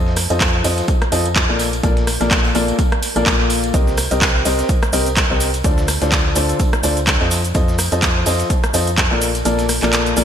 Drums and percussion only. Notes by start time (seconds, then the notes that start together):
0.06 snare
0.16 cross-stick, closed hi-hat, open hi-hat, tambourine
0.30 closed hi-hat, tambourine
0.41 kick, snare, clap, closed hi-hat, tambourine
0.64 open hi-hat, tambourine
0.78 snare, closed hi-hat, tambourine
0.88 kick, closed hi-hat, tambourine
1.02 cross-stick, closed hi-hat
1.12 closed hi-hat, open hi-hat, tambourine
1.25 closed hi-hat, tambourine
1.35 kick, snare, clap, closed hi-hat, tambourine
1.59 closed hi-hat, open hi-hat, tambourine
1.73 closed hi-hat, tambourine
1.83 kick, closed hi-hat, tambourine
1.97 snare, closed hi-hat
2.07 cross-stick, closed hi-hat, open hi-hat, tambourine
2.21 snare, closed hi-hat, tambourine
2.31 kick, snare, clap, closed hi-hat, tambourine
2.44 tambourine
2.55 closed hi-hat, open hi-hat, tambourine
2.68 closed hi-hat, tambourine
2.78 kick, closed hi-hat, tambourine
2.92 cross-stick, closed hi-hat
3.02 closed hi-hat, open hi-hat, tambourine
3.16 closed hi-hat, tambourine
3.26 kick, snare, clap, closed hi-hat, tambourine
3.40 snare
3.50 closed hi-hat, open hi-hat, tambourine
3.63 closed hi-hat, tambourine
3.74 kick, closed hi-hat, tambourine, cabasa
3.87 snare, cabasa
3.97 cross-stick, closed hi-hat, open hi-hat, tambourine, cabasa
4.11 closed hi-hat, tambourine, cabasa
4.21 kick, snare, clap, closed hi-hat, tambourine, cabasa
4.45 open hi-hat, tambourine, cabasa
4.59 snare, closed hi-hat, tambourine, cabasa
4.69 kick, closed hi-hat, tambourine, cabasa
4.83 cross-stick, closed hi-hat, cabasa
4.93 closed hi-hat, open hi-hat, tambourine, cabasa
5.06 closed hi-hat, tambourine, cabasa
5.16 kick, snare, clap, closed hi-hat, tambourine, cabasa
5.40 closed hi-hat, open hi-hat, tambourine, cabasa
5.54 closed hi-hat, tambourine, cabasa
5.64 kick, closed hi-hat, tambourine, cabasa
5.78 snare, cabasa
5.88 cross-stick, closed hi-hat, open hi-hat, tambourine, cabasa
6.01 snare, closed hi-hat, tambourine, cabasa
6.11 kick, snare, clap, closed hi-hat, tambourine, cabasa
6.35 closed hi-hat, open hi-hat, tambourine, cabasa
6.49 closed hi-hat, tambourine, cabasa
6.60 kick, closed hi-hat, tambourine, cabasa
6.73 cross-stick, closed hi-hat, cabasa
6.83 closed hi-hat, open hi-hat, tambourine, cabasa
6.97 closed hi-hat, tambourine, cabasa
7.07 kick, snare, clap, closed hi-hat, tambourine, cabasa
7.21 snare
7.31 closed hi-hat, open hi-hat, tambourine, cabasa
7.44 closed hi-hat, tambourine, cabasa
7.54 kick, closed hi-hat, tambourine, cabasa
7.68 snare, cabasa
7.79 cross-stick, closed hi-hat, open hi-hat, tambourine, cabasa
7.92 closed hi-hat, tambourine, cabasa
8.02 kick, snare, clap, closed hi-hat, tambourine, cabasa
8.26 open hi-hat, tambourine, cabasa
8.39 snare, closed hi-hat, tambourine, cabasa
8.50 kick, closed hi-hat, tambourine, cabasa
8.63 cross-stick, closed hi-hat, cabasa
8.74 closed hi-hat, open hi-hat, tambourine, cabasa
8.87 closed hi-hat, tambourine, cabasa
8.98 kick, snare, clap, closed hi-hat, tambourine, cabasa
9.21 closed hi-hat, open hi-hat, tambourine, cabasa
9.35 closed hi-hat, tambourine, cabasa
9.45 closed hi-hat, tambourine, cabasa
9.59 snare, closed hi-hat, tambourine, cabasa
9.69 cross-stick, closed hi-hat, open hi-hat, tambourine, cabasa
9.83 snare, clap, closed hi-hat, tambourine, cabasa
9.93 snare, clap, closed hi-hat, tambourine, cabasa
10.06 closed hi-hat, cabasa
10.17 closed hi-hat, open hi-hat, tambourine, cabasa